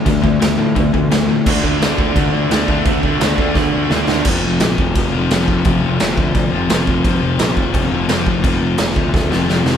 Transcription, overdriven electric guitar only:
X:1
M:4/4
L:1/8
Q:1/4=172
K:F
V:1 name="Overdriven electric guitar" clef=bass
[D,A,] [D,A,] [D,A,] [D,A,] [D,A,] [D,A,] [D,A,] [D,A,] | [D,A,D] [D,A,D] [D,A,D] [D,A,D] [D,A,D] [D,A,D] [D,A,D] [D,A,D] | [D,A,D] [D,A,D] [D,A,D] [D,A,D] [D,A,D] [D,A,D] [D,A,D] [D,A,D] | [F,,C,F,]4- [F,,C,F,] [F,,C,F,] [F,,C,F,]2 |
[F,,C,F,]4- [F,,C,F,] [F,,C,F,] [F,,C,F,]2 | [F,,C,F,]4- [F,,C,F,] [F,,C,F,] [F,,C,F,]2 | [F,,C,F,]4- [F,,C,F,] [F,,C,F,] [F,,C,F,]2 |]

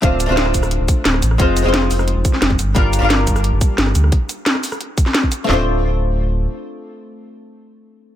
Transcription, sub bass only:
X:1
M:4/4
L:1/16
Q:1/4=176
K:Dphr
V:1 name="Sub bass" clef=bass
D,,,3 D,,,3 D,,,3 D,,, z2 D,,,2 A,,,2 | F,,,3 F,,,3 F,,,3 F,,, z2 F,,,2 G,,,2 | G,,,3 G,,,3 G,,,3 G,,, z2 G,,,2 D,,2 | z16 |
D,,,12 z4 | z16 |]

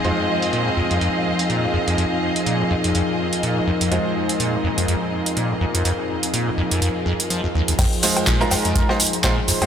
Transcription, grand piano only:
X:1
M:4/4
L:1/16
Q:"Swing 16ths" 1/4=124
K:Fm
V:1 name="Grand piano"
[A,EFc]16- | [A,EFc]16 | [A,EFc]16- | [A,EFc]16 |
z2 [A,EFc]3 [A,EFB]4 [A,EFc] z2 [A,EFc] z2 [A,EFc] |]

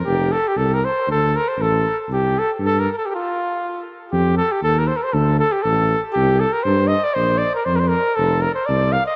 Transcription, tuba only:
X:1
M:2/4
L:1/8
Q:"Swing 16ths" 1/4=118
K:Fmix
V:1 name="Tuba" clef=bass
F,,,2 C,,2 | D,,2 A,,,2 | C,,2 G,,2 | z4 |
F,,2 E,,2 | D,,2 A,,,2 | C,,2 G,,2 | B,,,2 F,,2 |
F,,,2 C,,2 |]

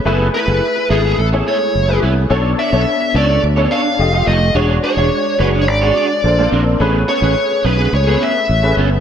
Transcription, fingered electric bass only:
X:1
M:4/4
L:1/16
Q:1/4=107
K:A
V:1 name="Fingered electric bass" clef=bass
F,,,2 z F,,, z2 G,,,2 A,,,2 z2 F,,,2 =C,,2 | B,,,2 z B,,, z2 C,,2 D,,2 z2 =F,,,2 F,,,2 | E,,,2 z E,,, z2 F,,,2 G,,,2 z2 _B,,,2 B,,,2 | A,,,2 z A,,, z2 B,,,2 C,,2 z2 A,,,2 =G,,,2 |]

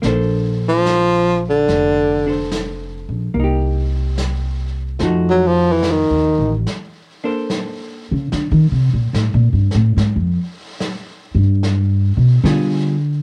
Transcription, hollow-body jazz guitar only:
X:1
M:4/4
L:1/8
Q:"Swing" 1/4=72
K:Bb
V:1 name="Hollow-body jazz guitar"
[B,DAc]4- [B,DAc] [DAc]3 | [B,EG]4 [F,A,E_G]4 | z [B,DAc]3 z4 | z6 [G,=B,F_A] z |]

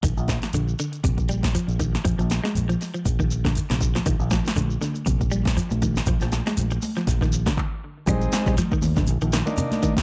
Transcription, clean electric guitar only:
X:1
M:4/4
L:1/16
Q:"Swing 16ths" 1/4=119
K:Bbmix
V:1 name="Clean electric guitar" clef=bass
E,2 F,2 D,2 D,2 C,2 G,2 F,2 E,2 | F, F,2 A,2 F,2 F,2 E,2 D,2 C,2 F, | E,2 F,2 D,2 D,2 C,2 G,2 F,2 E,2 | F, F,2 A,2 z2 F,2 E,2 D,2 z3 |
G,2 A, G, F, E,2 D,2 E, E,2 C,2 E,2 |]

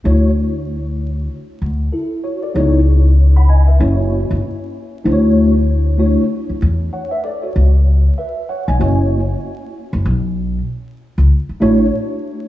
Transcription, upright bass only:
X:1
M:4/4
L:1/16
Q:"Swing 16ths" 1/4=96
K:D
V:1 name="Upright bass" clef=bass
D,,8 z2 D,,2 z4 | C,,8 F,,,3 G,,, z4 | D,,6- D,, z3 E,,2 z4 | C,,4 z3 B,,, F,,,4 z3 F,,, |
B,,,4 z3 C,, z2 A,,,2 z4 |]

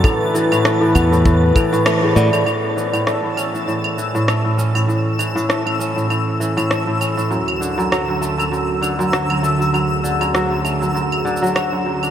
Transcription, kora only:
X:1
M:4/4
L:1/16
Q:"Swing 16ths" 1/4=99
K:A
V:1 name="Kora" clef=bass
A,,2 E, A,, A, A,, B, A,, A,,2 E, A,, A, A,, B, A,, | A,,2 E, A,, A, A,, C A,, A,,2 E, A,, A, A,, C A,, | A,,2 E, A,, A, A,, C A,, A,,2 E, A,, A, A,, C A,, | F,,2 D, F,, F, F,, A, F,, F,,2 D, F,, F, F,, A, F,, |
F,,2 D, F,, F, F,, A, F,, F,, z D, F, F F,, F,, D |]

